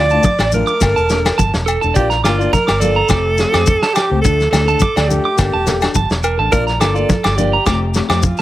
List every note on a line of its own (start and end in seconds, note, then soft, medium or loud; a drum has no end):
0.00 0.18 D2 medium
0.00 0.12 F3 medium
0.00 0.12 A3 medium
0.00 0.12 D4 medium
0.00 0.11 F4 medium
0.00 0.50 D5 loud
0.10 0.29 D4 medium
0.10 0.29 F4 medium
0.10 0.23 A5 medium
0.10 shekere soft
0.15 0.30 A3 soft
0.23 0.39 D6 medium
0.23 kick medium
0.23 high conga medium
0.23 shekere medium
0.39 0.61 A1 medium
0.39 0.51 D5 medium
0.39 snare medium
0.39 low agogo medium
0.39 shekere soft
0.52 0.71 F3 medium
0.52 0.71 A3 medium
0.52 0.72 D4 medium
0.52 0.72 F4 medium
0.52 1.64 A#4 loud
0.52 muted conga soft
0.52 high conga medium
0.52 shekere medium
0.67 0.80 D6 medium
0.67 shekere soft
0.81 0.94 G1 loud
0.81 1.00 A#3 medium
0.81 1.01 D4 medium
0.81 1.01 A4 medium
0.81 kick loud
0.81 snare medium
0.81 low agogo medium
0.81 shekere medium
0.96 1.29 E1 medium
0.96 1.09 A5 medium
0.96 shekere soft
1.09 1.26 A#3 medium
1.09 1.27 D4 medium
1.09 1.24 A4 medium
1.09 snare medium
1.09 muted conga soft
1.09 shekere medium
1.25 1.42 A4 medium
1.25 snare medium
1.25 low agogo medium
1.25 shekere soft
1.38 1.51 G1 medium
1.38 1.52 A5 medium
1.38 kick medium
1.38 high conga medium
1.38 shekere medium
1.54 1.76 E1 medium
1.54 snare medium
1.54 shekere soft
1.66 1.80 A4 medium
1.66 low agogo medium
1.66 shekere medium
1.81 1.94 E1 medium
1.81 1.97 D4 soft
1.81 1.96 A4 soft
1.81 1.94 A5 medium
1.81 shekere soft
1.94 2.24 A#1 loud
1.94 2.14 F3 medium
1.94 2.15 A#3 medium
1.94 2.15 D4 medium
1.94 2.15 F4 medium
1.94 2.09 G4 loud
1.94 2.09 D5 medium
1.94 kick medium
1.94 muted conga soft
1.94 shekere medium
2.10 2.23 A#5 medium
2.10 snare soft
2.10 shekere soft
2.24 2.46 G1 medium
2.24 2.41 A#3 medium
2.24 2.40 D4 medium
2.24 2.51 F4 medium
2.24 2.38 D6 medium
2.24 muted nylon-string guitar stroke medium
2.24 snare medium
2.24 low agogo medium
2.24 shekere medium
2.28 2.38 F4 medium
2.39 2.57 A#3 soft
2.39 2.57 D4 medium
2.39 2.56 F4 medium
2.39 2.51 D5 medium
2.39 shekere soft
2.53 2.82 A#4 loud
2.53 2.67 A#5 medium
2.53 kick medium
2.53 snare soft
2.53 high conga medium
2.53 shekere medium
2.67 3.01 G1 medium
2.67 2.80 D6 medium
2.67 snare medium
2.67 low agogo medium
2.67 shekere soft
2.80 2.99 F3 medium
2.80 3.00 A#3 medium
2.80 3.00 D4 medium
2.80 3.00 F4 medium
2.80 3.95 A4 loud
2.80 2.94 D5 medium
2.80 muted conga soft
2.80 high conga medium
2.80 shekere medium
2.96 3.08 A#5 medium
3.09 3.44 F1 loud
3.09 3.27 F3 medium
3.09 3.28 A3 medium
3.09 3.28 C4 medium
3.09 3.29 G4 medium
3.09 3.23 D6 medium
3.09 kick medium
3.09 snare medium
3.09 low agogo medium
3.09 shekere medium
3.37 3.53 F3 medium
3.37 3.54 A3 medium
3.37 3.53 C4 medium
3.37 3.51 G4 medium
3.37 snare medium
3.37 muted conga soft
3.37 shekere medium
3.52 3.76 F2 medium
3.52 3.71 A3 medium
3.52 3.71 C4 medium
3.52 3.70 G4 medium
3.52 3.66 D6 medium
3.52 snare medium
3.52 low agogo medium
3.52 shekere soft
3.66 kick medium
3.66 high conga medium
3.66 shekere loud
3.82 3.95 A5 medium
3.82 snare medium
3.82 shekere soft
3.93 4.21 G4 medium
3.93 4.09 D6 medium
3.93 snare medium
3.93 low agogo medium
3.93 shekere medium
4.10 4.21 C#2 medium
4.10 4.23 A3 soft
4.10 4.24 C4 soft
4.10 4.24 G4 medium
4.21 4.47 D2 loud
4.21 4.42 F3 medium
4.21 4.42 A3 medium
4.21 4.42 D4 medium
4.21 4.49 A4 loud
4.21 kick medium
4.21 shekere loud
4.25 4.43 A4 medium
4.40 snare soft
4.40 shekere soft
4.50 4.74 D2 medium
4.50 4.67 F3 medium
4.50 4.67 A3 medium
4.50 4.66 D4 medium
4.50 5.09 A4 loud
4.50 4.64 A4 medium
4.50 muted clean electric guitar stroke medium
4.50 snare medium
4.50 low agogo medium
4.50 shekere medium
4.65 4.85 A3 soft
4.65 4.84 D4 medium
4.65 4.83 A4 soft
4.65 4.80 A5 medium
4.65 shekere soft
4.80 4.95 D6 medium
4.80 kick medium
4.80 high conga medium
4.80 shekere medium
4.96 5.18 D2 medium
4.96 5.08 D5 medium
4.96 snare medium
4.96 low agogo medium
4.96 shekere soft
5.08 5.27 F3 medium
5.08 5.28 A3 medium
5.08 5.28 D4 medium
5.08 6.23 G4 medium
5.08 muted conga soft
5.08 high conga medium
5.08 shekere medium
5.12 5.29 A4 medium
5.25 5.37 D6 medium
5.36 5.50 G1 loud
5.36 5.55 A#3 medium
5.36 5.56 D4 medium
5.36 5.56 A4 medium
5.36 kick medium
5.36 snare medium
5.36 low agogo medium
5.36 shekere loud
5.53 5.86 E1 medium
5.53 5.65 A5 medium
5.65 5.81 A#3 medium
5.65 5.82 D4 medium
5.65 5.79 A4 medium
5.65 snare medium
5.65 muted conga soft
5.65 low conga medium
5.65 shekere medium
5.81 5.99 D4 soft
5.81 5.98 A4 medium
5.81 snare medium
5.81 low agogo medium
5.81 shekere soft
5.95 6.07 G1 medium
5.95 6.09 A5 medium
5.95 kick medium
5.95 high conga medium
5.95 shekere medium
6.10 6.39 E1 medium
6.10 snare medium
6.10 shekere soft
6.23 6.37 A#4 medium
6.23 low agogo medium
6.23 shekere medium
6.37 6.49 A1 medium
6.37 6.51 D4 soft
6.37 6.52 A4 soft
6.37 6.51 A5 medium
6.51 6.82 A#1 loud
6.51 6.69 F3 medium
6.51 6.70 A#3 medium
6.51 6.70 D4 medium
6.51 6.70 F4 medium
6.51 6.65 A#4 loud
6.51 6.66 D5 medium
6.51 kick medium
6.51 shekere medium
6.67 6.79 A#5 medium
6.67 snare soft
6.67 shekere soft
6.79 7.03 G1 medium
6.79 6.95 F3 medium
6.79 6.96 A#3 medium
6.79 6.94 D4 medium
6.79 6.93 F4 medium
6.79 7.37 A4 loud
6.79 6.94 D6 medium
6.79 snare medium
6.79 low agogo medium
6.79 shekere medium
6.94 7.13 A#3 soft
6.94 7.12 D4 soft
6.94 7.11 F4 medium
6.94 7.08 D5 medium
6.94 shekere soft
7.09 kick medium
7.09 snare soft
7.09 high conga loud
7.09 shekere medium
7.24 7.57 G1 medium
7.24 7.37 D6 medium
7.24 snare medium
7.24 low agogo medium
7.24 shekere soft
7.35 7.56 A#3 medium
7.35 7.56 D4 medium
7.35 7.94 G4 medium
7.35 7.51 D5 medium
7.35 muted nylon-string guitar stroke medium
7.35 muted conga soft
7.35 high conga medium
7.35 shekere medium
7.40 7.56 F4 medium
7.53 7.65 A#5 medium
7.65 8.00 F1 loud
7.65 7.84 F3 medium
7.65 7.84 A3 medium
7.65 7.85 C4 medium
7.65 7.85 G4 medium
7.65 7.80 D6 medium
7.65 kick medium
7.65 snare medium
7.65 muted conga soft
7.65 low agogo medium
7.65 shekere medium
7.94 8.10 F3 medium
7.94 8.10 A3 medium
7.94 8.09 C4 medium
7.94 8.07 G4 medium
7.94 snare medium
7.94 muted conga soft
7.94 shekere medium
8.09 8.31 F2 medium
8.09 8.27 A3 soft
8.09 8.26 C4 soft
8.09 8.26 G4 soft
8.09 8.22 D6 medium
8.09 snare medium
8.09 low agogo medium
8.09 shekere soft
8.16 8.24 G4 medium
8.22 8.42 F4 medium
8.22 kick medium
8.22 high conga medium
8.22 shekere loud
8.37 shekere soft